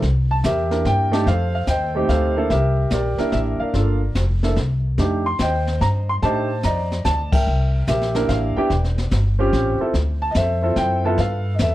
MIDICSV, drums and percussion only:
0, 0, Header, 1, 2, 480
1, 0, Start_track
1, 0, Tempo, 413223
1, 26, Time_signature, 3, 2, 24, 8
1, 13646, End_track
2, 0, Start_track
2, 0, Title_t, "Drums"
2, 26, Note_on_c, 9, 25, 53
2, 26, Note_on_c, 9, 38, 43
2, 28, Note_on_c, 9, 36, 25
2, 142, Note_off_c, 9, 38, 0
2, 144, Note_off_c, 9, 36, 0
2, 506, Note_on_c, 9, 44, 63
2, 509, Note_on_c, 9, 36, 20
2, 511, Note_on_c, 9, 38, 59
2, 622, Note_off_c, 9, 44, 0
2, 625, Note_off_c, 9, 36, 0
2, 628, Note_off_c, 9, 38, 0
2, 826, Note_on_c, 9, 38, 40
2, 942, Note_off_c, 9, 38, 0
2, 986, Note_on_c, 9, 36, 24
2, 990, Note_on_c, 9, 38, 47
2, 1102, Note_off_c, 9, 36, 0
2, 1106, Note_off_c, 9, 38, 0
2, 1314, Note_on_c, 9, 38, 56
2, 1431, Note_off_c, 9, 38, 0
2, 1468, Note_on_c, 9, 36, 22
2, 1471, Note_off_c, 9, 25, 0
2, 1471, Note_on_c, 9, 25, 47
2, 1471, Note_on_c, 9, 38, 46
2, 1584, Note_off_c, 9, 36, 0
2, 1588, Note_off_c, 9, 38, 0
2, 1939, Note_on_c, 9, 44, 60
2, 1944, Note_on_c, 9, 36, 20
2, 1945, Note_on_c, 9, 38, 63
2, 2055, Note_off_c, 9, 44, 0
2, 2060, Note_off_c, 9, 36, 0
2, 2061, Note_off_c, 9, 38, 0
2, 2424, Note_on_c, 9, 36, 25
2, 2426, Note_on_c, 9, 38, 48
2, 2540, Note_off_c, 9, 36, 0
2, 2542, Note_off_c, 9, 38, 0
2, 2902, Note_on_c, 9, 36, 21
2, 2904, Note_off_c, 9, 25, 0
2, 2904, Note_on_c, 9, 25, 48
2, 2904, Note_on_c, 9, 38, 48
2, 3018, Note_off_c, 9, 36, 0
2, 3020, Note_off_c, 9, 38, 0
2, 3373, Note_on_c, 9, 44, 63
2, 3379, Note_on_c, 9, 38, 63
2, 3382, Note_on_c, 9, 36, 20
2, 3489, Note_off_c, 9, 44, 0
2, 3495, Note_off_c, 9, 38, 0
2, 3498, Note_off_c, 9, 36, 0
2, 3700, Note_on_c, 9, 38, 42
2, 3816, Note_off_c, 9, 38, 0
2, 3861, Note_on_c, 9, 38, 49
2, 3862, Note_on_c, 9, 36, 19
2, 3977, Note_off_c, 9, 38, 0
2, 3978, Note_off_c, 9, 36, 0
2, 4343, Note_off_c, 9, 25, 0
2, 4343, Note_on_c, 9, 25, 58
2, 4343, Note_on_c, 9, 38, 47
2, 4344, Note_on_c, 9, 36, 23
2, 4459, Note_off_c, 9, 38, 0
2, 4460, Note_off_c, 9, 36, 0
2, 4820, Note_on_c, 9, 44, 53
2, 4824, Note_on_c, 9, 36, 19
2, 4826, Note_on_c, 9, 38, 64
2, 4936, Note_off_c, 9, 44, 0
2, 4941, Note_off_c, 9, 36, 0
2, 4942, Note_off_c, 9, 38, 0
2, 5148, Note_on_c, 9, 38, 38
2, 5264, Note_off_c, 9, 38, 0
2, 5303, Note_on_c, 9, 36, 19
2, 5303, Note_on_c, 9, 38, 49
2, 5419, Note_off_c, 9, 36, 0
2, 5419, Note_off_c, 9, 38, 0
2, 5783, Note_on_c, 9, 36, 27
2, 5784, Note_off_c, 9, 25, 0
2, 5784, Note_on_c, 9, 25, 47
2, 5784, Note_on_c, 9, 38, 48
2, 5900, Note_off_c, 9, 36, 0
2, 5900, Note_off_c, 9, 38, 0
2, 6257, Note_on_c, 9, 44, 55
2, 6263, Note_on_c, 9, 38, 62
2, 6264, Note_on_c, 9, 36, 26
2, 6373, Note_off_c, 9, 44, 0
2, 6379, Note_off_c, 9, 38, 0
2, 6380, Note_off_c, 9, 36, 0
2, 6589, Note_on_c, 9, 38, 42
2, 6706, Note_off_c, 9, 38, 0
2, 6746, Note_on_c, 9, 36, 24
2, 6749, Note_on_c, 9, 38, 52
2, 6862, Note_off_c, 9, 36, 0
2, 6866, Note_off_c, 9, 38, 0
2, 7226, Note_on_c, 9, 36, 21
2, 7227, Note_off_c, 9, 25, 0
2, 7227, Note_on_c, 9, 25, 58
2, 7227, Note_on_c, 9, 38, 48
2, 7342, Note_off_c, 9, 36, 0
2, 7343, Note_off_c, 9, 38, 0
2, 7700, Note_on_c, 9, 44, 64
2, 7705, Note_on_c, 9, 38, 59
2, 7706, Note_on_c, 9, 36, 19
2, 7816, Note_off_c, 9, 44, 0
2, 7822, Note_off_c, 9, 38, 0
2, 7823, Note_off_c, 9, 36, 0
2, 8034, Note_on_c, 9, 38, 43
2, 8150, Note_off_c, 9, 38, 0
2, 8185, Note_on_c, 9, 44, 60
2, 8189, Note_on_c, 9, 36, 23
2, 8190, Note_on_c, 9, 38, 70
2, 8301, Note_off_c, 9, 44, 0
2, 8305, Note_off_c, 9, 36, 0
2, 8306, Note_off_c, 9, 38, 0
2, 8509, Note_on_c, 9, 36, 85
2, 8510, Note_on_c, 9, 49, 74
2, 8625, Note_off_c, 9, 36, 0
2, 8626, Note_off_c, 9, 49, 0
2, 8669, Note_off_c, 9, 25, 0
2, 8669, Note_on_c, 9, 25, 47
2, 9145, Note_on_c, 9, 44, 62
2, 9149, Note_on_c, 9, 36, 22
2, 9151, Note_on_c, 9, 38, 63
2, 9261, Note_off_c, 9, 44, 0
2, 9265, Note_off_c, 9, 36, 0
2, 9267, Note_off_c, 9, 38, 0
2, 9310, Note_on_c, 9, 38, 30
2, 9426, Note_off_c, 9, 38, 0
2, 9465, Note_on_c, 9, 38, 45
2, 9473, Note_off_c, 9, 38, 0
2, 9473, Note_on_c, 9, 38, 41
2, 9589, Note_off_c, 9, 38, 0
2, 9627, Note_on_c, 9, 36, 25
2, 9627, Note_on_c, 9, 38, 46
2, 9743, Note_off_c, 9, 36, 0
2, 9744, Note_off_c, 9, 38, 0
2, 10107, Note_on_c, 9, 36, 25
2, 10108, Note_off_c, 9, 25, 0
2, 10108, Note_on_c, 9, 25, 57
2, 10108, Note_on_c, 9, 38, 48
2, 10223, Note_off_c, 9, 36, 0
2, 10224, Note_off_c, 9, 38, 0
2, 10270, Note_on_c, 9, 38, 28
2, 10386, Note_off_c, 9, 38, 0
2, 10430, Note_on_c, 9, 38, 49
2, 10546, Note_off_c, 9, 38, 0
2, 10581, Note_on_c, 9, 44, 54
2, 10586, Note_on_c, 9, 36, 25
2, 10587, Note_on_c, 9, 38, 65
2, 10697, Note_off_c, 9, 44, 0
2, 10702, Note_off_c, 9, 36, 0
2, 10703, Note_off_c, 9, 38, 0
2, 11067, Note_on_c, 9, 36, 27
2, 11071, Note_on_c, 9, 38, 50
2, 11183, Note_off_c, 9, 36, 0
2, 11187, Note_off_c, 9, 38, 0
2, 11545, Note_on_c, 9, 36, 25
2, 11549, Note_off_c, 9, 25, 0
2, 11549, Note_on_c, 9, 25, 52
2, 11549, Note_on_c, 9, 38, 48
2, 11661, Note_off_c, 9, 36, 0
2, 11665, Note_off_c, 9, 38, 0
2, 12015, Note_on_c, 9, 44, 55
2, 12020, Note_on_c, 9, 38, 59
2, 12024, Note_on_c, 9, 36, 21
2, 12131, Note_off_c, 9, 44, 0
2, 12137, Note_off_c, 9, 38, 0
2, 12140, Note_off_c, 9, 36, 0
2, 12500, Note_on_c, 9, 38, 50
2, 12502, Note_on_c, 9, 36, 22
2, 12617, Note_off_c, 9, 38, 0
2, 12618, Note_off_c, 9, 36, 0
2, 12983, Note_off_c, 9, 25, 0
2, 12983, Note_on_c, 9, 25, 45
2, 12983, Note_on_c, 9, 38, 47
2, 12985, Note_on_c, 9, 36, 20
2, 13099, Note_off_c, 9, 38, 0
2, 13101, Note_off_c, 9, 36, 0
2, 13459, Note_on_c, 9, 44, 61
2, 13465, Note_on_c, 9, 38, 64
2, 13466, Note_on_c, 9, 36, 19
2, 13575, Note_off_c, 9, 44, 0
2, 13581, Note_off_c, 9, 38, 0
2, 13582, Note_off_c, 9, 36, 0
2, 13646, Note_off_c, 9, 25, 0
2, 13646, End_track
0, 0, End_of_file